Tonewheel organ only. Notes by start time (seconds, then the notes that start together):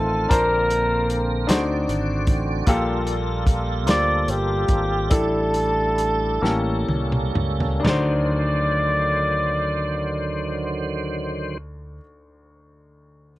Already playing: D#3 A3 C4 F4
0.31 D3 A#3 A#4
1.49 D3 F#4 D5
2.67 G3 A#3 F4 A4
5.11 D4 E4
6.43 G3 A#3 C#4
7.84 D3 D#3 F#3 C5